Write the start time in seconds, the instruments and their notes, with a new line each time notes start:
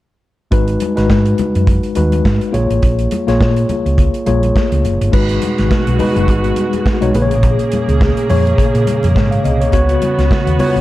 0.51 fingered electric bass G#1, tine electric piano G#3 D#4 F#4 B4, kick, closed hi-hat
0.68 closed hi-hat
0.80 closed hi-hat, muted conga, high conga
0.96 fingered electric bass G#1, tine electric piano G#3 D#4 F#4 B4, snare, closed hi-hat
1.10 fingered electric bass G#2, kick, snare, muted conga
1.26 closed hi-hat
1.38 closed hi-hat, muted conga, high conga, low conga
1.55 fingered electric bass F#2, closed hi-hat
1.67 kick, closed hi-hat, low conga
1.83 closed hi-hat
1.95 fingered electric bass D#2, tine electric piano G#3 D#4 F#4 B4, closed hi-hat, muted conga, high conga
2.12 closed hi-hat, high conga
2.25 fingered electric bass G#2, kick, snare, muted conga
2.41 closed hi-hat
2.53 fingered electric bass A#1, tine electric piano A#3 F4 G#4 C#5, closed hi-hat, muted conga, low conga
2.70 fingered electric bass A1, closed hi-hat
2.82 fingered electric bass A#1, kick, closed hi-hat, muted conga
2.99 closed hi-hat
3.11 closed hi-hat, muted conga, high conga
3.27 fingered electric bass A#1, tine electric piano A#3 F4 G#4 C#5, snare, closed hi-hat
3.41 fingered electric bass A#2, kick, snare
3.57 closed hi-hat
3.69 closed hi-hat, muted conga, high conga, low conga
3.86 fingered electric bass C#2, closed hi-hat
3.98 kick, closed hi-hat, low conga
4.14 closed hi-hat
4.26 fingered electric bass A#1, tine electric piano A#3 F4 G#4 C#5, closed hi-hat, muted conga, high conga
4.43 closed hi-hat, high conga
4.56 kick, snare, muted conga
4.72 fingered electric bass C#2, closed hi-hat
4.84 fingered electric bass F#1, closed hi-hat, low conga
5.01 fingered electric bass G1, closed hi-hat
5.12 fingered electric bass G#1, string section B2 G#3 F#4, tine electric piano G#3 D#4 F#4 B4, kick, crash, muted conga
5.29 closed hi-hat
5.42 closed hi-hat, high conga
5.58 fingered electric bass G#1, snare, closed hi-hat
5.71 kick, snare, muted conga
5.87 fingered electric bass B1, closed hi-hat
5.99 tine electric piano G#3 D#4 F#4 B4, open hi-hat, muted conga, high conga, low conga
6.16 fingered electric bass F#1, closed hi-hat
6.28 fingered electric bass G#1, kick, closed hi-hat
6.44 closed hi-hat
6.56 closed hi-hat, high conga
6.73 closed hi-hat, high conga
6.86 kick, snare, muted conga
7.01 fingered electric bass B1, tine electric piano G#3 D#4 F#4 C#5, closed hi-hat
7.14 fingered electric bass A#1, tine electric piano A#2 A#3 G#4 B4, string section C#3 A#3 G#4, closed hi-hat, muted conga, low conga
7.22 tine electric piano C#5
7.31 fingered electric bass A1, closed hi-hat
7.43 fingered electric bass A#1, kick, closed hi-hat, muted conga
7.59 closed hi-hat
7.72 closed hi-hat, muted conga, high conga
7.88 fingered electric bass C#2, closed hi-hat
8.01 kick, snare
8.17 closed hi-hat
8.29 fingered electric bass F2, tine electric piano A#2 A#3 G#4 C#5, open hi-hat, high conga, low conga
8.47 closed hi-hat
8.58 muted fingered electric bass stroke, kick, closed hi-hat, muted conga
8.75 fingered electric bass A#2, closed hi-hat
8.87 closed hi-hat, high conga
9.03 fingered electric bass F2, closed hi-hat, high conga
9.15 fingered electric bass G#2, tine electric piano C#5, kick, snare, muted conga
9.31 tine electric piano F5, closed hi-hat
9.44 fingered electric bass C2, tine electric piano D#5, closed hi-hat, low conga
9.61 tine electric piano C#5, closed hi-hat
9.72 fingered electric bass C#2, tine electric piano C#3 B3 F#4 C#5, string section B3 F#4, kick, closed hi-hat, muted conga
9.89 closed hi-hat
10.02 closed hi-hat, high conga
10.18 fingered electric bass C#2, snare, closed hi-hat
10.31 kick, snare
10.47 fingered electric bass D#2, closed hi-hat
10.59 tine electric piano C#3 B3 F4 C#5, open hi-hat, muted conga, high conga, low conga
10.66 tine electric piano F#4
10.76 fingered electric bass G#1, closed hi-hat